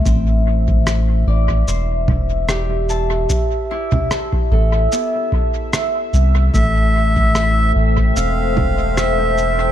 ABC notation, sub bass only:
X:1
M:4/4
L:1/8
Q:"Swing 16ths" 1/4=74
K:Am
V:1 name="Sub bass" clef=bass
A,,,3 A,,, E,,,4 | z3 A,,, z3 C,, | A,,,3 A,,, E,,,4 |]